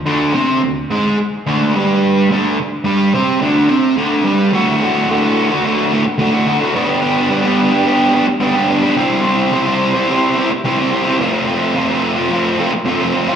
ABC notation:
X:1
M:4/4
L:1/16
Q:1/4=108
K:Clyd
V:1 name="Overdriven electric guitar"
[D,,D,]2 [C,C]2 D,,2 [^G,,^G,]2 z2 [D,,D,]2 [=G,,=G,]4 | [D,,D,]2 z2 [G,,G,]2 [C,C]2 [D,,D,]2 [C,C]2 [D,,D,]2 [G,,G,]2 | [D,,A,,D,A,F]2 [A,,D,A,F]2 [D,,A,,D,A,F] [D,A,F]2 [D,A,F] [A,,D,A,F]2 [A,,D,A,F]2 [D,,A,,D,A,F] [D,A,F] [A,,D,A,F] [D,A,F] | [G,,D,G,B,DG]2 [G,B,DG]2 [G,,D,G,B,DG] [G,B,DG]2 [G,B,DG] [G,B,DG]2 [G,B,DG]2 [G,,D,G,B,DG] [G,B,DG] [G,B,DG] [G,B,DG] |
[C,G,CEGc]2 [CEGc]2 [C,G,CEGc] [CEGc]2 [CEGc] [CEGc]2 [CEGc]2 [C,G,CEGc] [CEGc] [CEGc] [CEGc] | [=F,,C,=F,A,C=F]2 [F,A,CF]2 [F,,C,F,A,CF] [F,A,CF]2 [F,A,CF] [F,A,CF]2 [F,A,CF]2 [F,,C,F,A,CF] [F,A,CF] [F,A,CF] [A,CF] |]